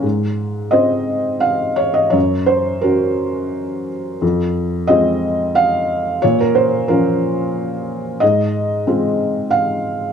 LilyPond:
\new Staff \with { instrumentName = "Felt piano" } { \time 3/4 \key aes \mixolydian \tempo 4 = 89 << { r4 ees''4 f''8 des''16 ees''16 | des''8 c''8 bes'4. r8 | r4 ees''4 f''4 | des''16 bes'16 c''8 bes'4. r8 |
ees''2 f''4 | } \\ { aes,4 <c' f' c''>2 | ges,4 <des' ges'>2 | f,4 <aes c' f'>2 | bes,4 <f des' f'>2 |
aes,4 <aes c' f'>2 | } >> }